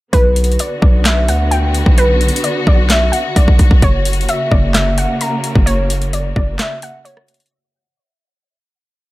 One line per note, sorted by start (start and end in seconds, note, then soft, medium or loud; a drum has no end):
0.13 0.57 B1 loud
0.13 3.79 D3 medium
0.13 3.79 B3 medium
0.13 7.48 F#4 medium
0.13 0.56 B4 loud
0.13 kick loud
0.13 closed hi-hat medium
0.36 closed hi-hat medium
0.44 closed hi-hat medium
0.52 closed hi-hat medium
0.59 0.81 D5 medium
0.59 closed hi-hat medium
0.82 1.30 B1 loud
0.82 1.04 D5 medium
0.82 kick loud
1.05 1.27 E5 medium
1.05 snare loud
1.05 clap medium
1.05 closed hi-hat medium
1.28 1.83 D2 loud
1.28 1.50 F#5 medium
1.28 closed hi-hat medium
1.51 1.73 G5 medium
1.51 closed hi-hat medium
1.74 closed hi-hat medium
1.86 2.31 B1 loud
1.86 kick loud
1.98 2.41 B4 loud
1.98 closed hi-hat medium
2.21 closed hi-hat medium
2.28 closed hi-hat medium
2.36 closed hi-hat medium
2.44 2.66 D5 medium
2.44 closed hi-hat medium
2.67 3.11 B1 loud
2.67 2.89 D5 medium
2.67 kick loud
2.90 3.12 E5 medium
2.90 snare loud
2.90 clap medium
2.90 closed hi-hat medium
3.12 3.34 F#5 medium
3.12 closed hi-hat medium
3.36 3.47 B1 loud
3.36 3.58 D5 medium
3.36 kick medium
3.36 closed hi-hat medium
3.48 3.59 B1 loud
3.48 kick loud
3.59 3.70 B1 loud
3.59 kick medium
3.59 closed hi-hat medium
3.71 3.82 B1 loud
3.71 kick loud
3.82 4.27 F#1 loud
3.82 7.48 C#3 medium
3.82 7.48 A#3 medium
3.82 4.26 C#5 loud
3.82 kick loud
3.82 closed hi-hat medium
4.05 closed hi-hat medium
4.13 closed hi-hat medium
4.21 closed hi-hat medium
4.29 4.50 E5 medium
4.29 closed hi-hat medium
4.51 5.07 F#1 loud
4.51 4.73 D5 medium
4.51 kick loud
4.74 4.96 E5 medium
4.74 snare loud
4.74 clap medium
4.74 closed hi-hat medium
4.98 5.20 F#5 medium
4.98 closed hi-hat medium
5.21 5.43 A#5 medium
5.21 closed hi-hat medium
5.44 closed hi-hat medium
5.55 6.33 F#1 loud
5.55 kick loud
5.66 6.10 C#5 loud
5.66 closed hi-hat medium
5.90 closed hi-hat medium
6.02 closed hi-hat medium
6.13 6.35 D5 medium
6.13 closed hi-hat medium
6.36 6.58 F#1 loud
6.36 6.58 D5 medium
6.36 kick loud
6.59 6.81 E5 medium
6.59 cross-stick medium
6.59 snare loud
6.59 clap medium
6.59 closed hi-hat medium
6.82 7.04 F#5 medium
6.82 closed hi-hat medium
7.05 7.27 C#5 medium
7.05 closed hi-hat medium
7.17 cross-stick medium
7.28 closed hi-hat medium
7.28 open hi-hat medium
7.34 closed hi-hat medium
7.40 closed hi-hat medium
7.46 closed hi-hat medium